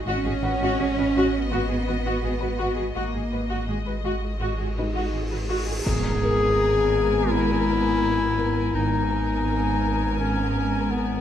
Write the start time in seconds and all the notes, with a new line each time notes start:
0.06 G#1 C#4 F#4 D#5
0.25 G#1 F#4 G#4
0.43 G#1 F#4 B4 F#5
0.60 G#1 F#4
0.79 G#1 F#4 G#4
0.97 G#1 F#4 B4
1.15 G#1 F#4
1.52 G#1 B3 F#4
1.69 G#1 F#4 G#4
1.87 G#1 F#4 B4
2.05 G#1 F#4
2.23 G#1 F#4 G#4
2.41 G#1 F#4 B4
2.58 G#1 F#4
2.76 G#1 F#4 G#4
2.95 G#1 A#3 F#4 D#5, cymbal swell
3.14 G#1 F#4 G#4
3.32 G#1 F#4 B4
3.50 G#1 F#4
3.68 G#1 G#3 F#4 G#4
3.86 G#1 F#4 B4
4.03 G#1 F#4
4.40 G#1 F#4
4.59 G#1 F#4 G#4
4.77 G#1 D#4 F#4 B4 D#5
4.94 G#1 F#4
5.13 G#1 F#4 G#4
5.31 G#1 F#4 B4
5.49 G#1 F#4
5.67 G#1 F#4 G#4
5.85 G#1 G#2 B3 G#4 A#4 G#5, impact
6.24 A#4
7.30 E4
8.38 A#4
8.73 G#1 G#2 B3 D#4 A#4 G#5
10.19 C#4
10.91 B3